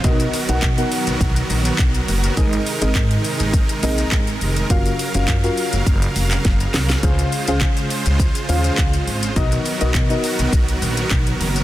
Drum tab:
HH |xxoxxxoxxxoxxxox|xxoxxxoxxxoxxxox|xxoxxxoxxxoxxxox|xxoxxxoxxxoxxxox|
SH |xxxxxxxxxxxxxxxx|xxxxxxxxxxxxxxxx|xxxxxxxxxxxxxxxx|xxxxxxxxxxxxxxxx|
CP |----x-------x---|----x-------x---|----x------x----|----x-------x---|
SD |----------------|----------------|------------o-oo|----------------|
BD |o---o---o---o---|o---o---o---o---|o---o---o---o---|o---o---o---o---|

HH |xxoxxxoxxxoxxxox|
SH |xxxxxxxxxxxxxxxx|
CP |----x-------x---|
SD |----------------|
BD |o---o---o---o---|